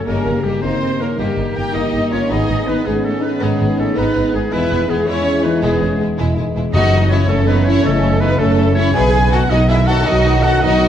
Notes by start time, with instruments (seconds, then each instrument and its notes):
Already playing: harp C#3
0.06 double bass section G1, harp G2, trombone section D#3 A#3, cello section A#3, violin section A#3 C#4 D#4, french horn section G4, oboe A#4, clarinet A#4, viola section A#4
0.26 double bass section G1, violin section A#3 D#4, harp A#3
0.44 double bass section G1, cello section G3, violin section A#3 D#4, oboe G4, viola section G4, clarinet G4, harp A#4
0.62 double bass section G1, violin section A#3 D#4, cello section C4, harp D#4, french horn section D#4, oboe C5, viola section C5, clarinet C5
0.82 harp A#4
0.99 cello section A#3, violin section C#4, harp D#4, clarinet A#4, viola section A#4, oboe A#4
1.18 double bass section G1, harp G2, cello section G3, violin section A#3 D#4, clarinet G4, viola section G4, oboe G4
1.37 double bass section G1, harp A#3, violin section A#3 D#4
1.55 double bass section G1, violin section A#3 D#4 A#4, cello section G4, harp A#4, viola section G5, clarinet G5, oboe G5
1.74 double bass section G1, violin section A#3 D#4 G4, french horn section A#3, cello section D#4, harp D#4, oboe D#5, viola section D#5, clarinet D#5
1.92 double bass section G1, violin section A#3 D#4, harp A#4
2.10 double bass section G1, violin section A#3 D#4 F4, cello section C#4, harp D#4, viola section C#5, oboe C#5, clarinet C#5
2.28 double bass section G#1, harp G#2, violin section B3 D#4 G#4, trombone section B3, french horn section B3, cello section D#4, clarinet D#5, viola section D#5, oboe D#5
2.47 double bass section G#1, violin section B3 D#4, harp B3
2.67 double bass section G#1, cello section B3, violin section B3 D#4, harp G#4, clarinet B4, oboe B4, viola section B4
2.83 double bass section G#1, cello section G#3, violin section B3 D#4, french horn section C#4, oboe G#4, clarinet G#4, harp B4
2.88 viola section G#4
3.03 cello section A3, violin section C#4, harp G#4, clarinet A4, oboe A4, viola section A4
3.20 cello section B3, violin section D#4, harp D#4, clarinet B4, viola section B4
3.25 oboe B4
3.40 double bass section G#1, harp D#3, cello section G#3, violin section B3 D#4, oboe G#4, clarinet G#4, viola section G#4
3.59 double bass section G#1, violin section B3 D#4, harp B3
3.77 double bass section G#1, cello section A3, violin section B3 C#4 D#4, harp G#4, oboe A4, clarinet A4, viola section A4
3.95 double bass section G#1, violin section B3 D#4, cello section B3, french horn section D#4, viola section B4, harp B4, oboe B4, clarinet B4
4.14 double bass section G#1, violin section B3 D#4, harp G#4
4.33 double bass section G#1, cello section G#3, violin section B3 D#4, harp D#4, oboe G#4, viola section G#4
4.38 clarinet G#4
4.51 double bass section E1, harp E2, trombone section E3 G#3, violin section G#3 E4, cello section B3, french horn section G#4, viola section B4, oboe B4
4.57 clarinet B4
4.71 double bass section E1, violin section G#3 E4, harp B3
4.88 double bass section E1, cello section G#3, violin section G#3 B3 E4, viola section G#4, oboe G#4, harp G#4
4.92 clarinet G#4
5.07 double bass section E1, violin section G#3 E4, cello section C#4, french horn section E4, harp B4, viola section C#5, oboe C#5
5.12 clarinet C#5
5.26 harp G#4
5.43 harp E3, cello section B3, violin section D#4, viola section B4, oboe B4
5.48 clarinet B4
5.62 double bass section E1, harp B2, violin section G#3 B3 E4, cello section G#3, french horn section B3, viola section G#4, oboe G#4
5.67 clarinet G#4
5.80 double bass section E1, violin section G#3 E4, harp B3, french horn section C#4
5.98 double bass section E1, violin section G#3 E4, french horn section D#4, harp G#4
6.17 double bass section E1, violin section G#3 E4, french horn section E4, harp B4
6.36 double bass section E1, violin section G#3 E4, french horn section D#4, harp G#4
6.56 double bass section E1, french horn section E3, violin section G#3 E4, harp B3
6.73 double bass section F#1, timpani F#2, harp F#2, violin section A3 E4 F#4, trombone section A3, cello section D#4, oboe D#5, viola section D#5, clarinet D#5
6.93 harp A3, violin section A3 E4
7.09 violin section A3 E4, cello section C#4, harp F#4, oboe C#5, viola section C#5, clarinet C#5
7.28 double bass section F#1, cello section A3, violin section A3 C#4 E4, french horn section C#4, harp A4, oboe A4, clarinet A4, viola section A4
7.47 violin section A3 D#4 E4, cello section B3, harp F#4, oboe B4, clarinet B4, viola section B4
7.65 violin section A3 E4, cello section C#4, harp E4, oboe C#5, clarinet C#5, viola section C#5
7.84 double bass section F#1, harp C#3, cello section A3, violin section A3 C#4 E4, clarinet A4, oboe A4, viola section A4, french horn section D#5
8.03 harp A3, violin section A3 E4
8.20 violin section A3 D#4 E4, cello section B3, harp F#4, oboe B4, viola section B4, clarinet B4
8.38 double bass section F#1, cello section A3, violin section A3 C#4 E4, french horn section C#4, oboe A4, harp A4, viola section A4, clarinet A4
8.57 violin section A3 E4, harp F#4
8.75 violin section A3 E4, cello section C#4, harp E4, oboe C#5, clarinet C#5, viola section C#5
8.94 double bass section B1, harp B2, trombone section D#3 F#3, french horn section B3, violin section B3 D#4 B4, cello section G#4, oboe G#5, viola section G#5, clarinet G#5
9.13 violin section B3 D#4, harp B3
9.32 violin section B3 D#4 A4, cello section F#4, harp F#4, viola section F#5, oboe F#5, clarinet F#5
9.50 double bass section B1, violin section B3 D#4 F#4, cello section D#4, french horn section D#4, harp B4, viola section D#5, oboe D#5, clarinet D#5
9.69 violin section B3 D#4 G#4, cello section E4, harp F#4, oboe E5, clarinet E5, viola section E5
9.86 violin section B3 D#4 A4, harp D#4, cello section F#4, oboe F#5, viola section F#5, clarinet F#5
10.05 double bass section B1, harp F#3, violin section B3 D#4 F#4, cello section D#4, french horn section F#4, clarinet D#5, oboe D#5, viola section D#5
10.26 harp B3, violin section B3 D#4
10.43 violin section B3 D#4 A4, cello section F#4, harp F#4, oboe F#5, viola section F#5, clarinet F#5
10.61 double bass section B1, violin section B3 D#4 F#4, cello section D#4, french horn section D#4, harp B4, oboe D#5, clarinet D#5, viola section D#5
10.81 violin section B3 D#4, harp F#4